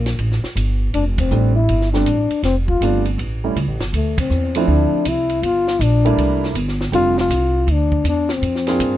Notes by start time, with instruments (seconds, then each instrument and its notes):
Already playing: upright bass A#1, trombone A#3
0.06 snare, ride
0.19 upright bass A1, ride
0.32 snare
0.44 snare
0.56 upright bass G1, hi-hat pedal, ride
0.94 upright bass F1, trombone D4, ride
1.18 trombone C4, kick, ride
1.31 upright bass A1, grand piano G3 A3 C4 D4, hi-hat pedal
1.56 trombone E4
1.68 upright bass G1, ride
1.81 snare
1.93 grand piano G3 A3 C4 D4, trombone D4, snare
2.06 upright bass A1, hi-hat pedal, ride
2.30 muted upright bass stroke, ride
2.43 upright bass F1, trombone C4, snare, ride
2.68 trombone F4, kick
2.81 upright bass G1, grand piano G3 A3 C4 D4, hi-hat pedal, ride
3.05 ride
3.18 upright bass A1, ride
3.44 grand piano G3 A3 C#4 E4
3.55 upright bass C#2, hi-hat pedal, ride
3.68 upright bass A1
3.80 upright bass G1, snare, ride
3.92 upright bass D2, trombone A3, ride
4.18 trombone C4, kick, ride
4.30 upright bass E2, hi-hat pedal
4.55 grand piano F3 A3 C4 D4 E4, trombone C4, ride
4.68 upright bass D2, trombone D4
5.05 upright bass C2, trombone E4, hi-hat pedal, ride
5.29 ride
5.42 upright bass G1, trombone F4, ride
5.68 snare
5.79 upright bass A#1, trombone D4, hi-hat pedal, ride
6.05 grand piano G3 A3 A#3 D4 E4, ride
6.17 upright bass C2, ride
6.43 snare
6.54 upright bass G1, hi-hat pedal, ride
6.68 snare
6.81 snare
6.92 upright bass F1, grand piano G3 A3 C4 D4 F4, trombone F4, ride
7.18 trombone F4, snare
7.30 upright bass C2, hi-hat pedal, ride
7.67 upright bass D2, ride
7.73 trombone D4
7.92 kick
8.04 upright bass E2, hi-hat pedal, ride
8.09 trombone D4
8.29 snare
8.34 trombone C4
8.42 upright bass F2, ride
8.55 snare
8.67 grand piano A#3 C4 D4 F4 G#4, snare, ride
8.79 upright bass G2, hi-hat pedal, ride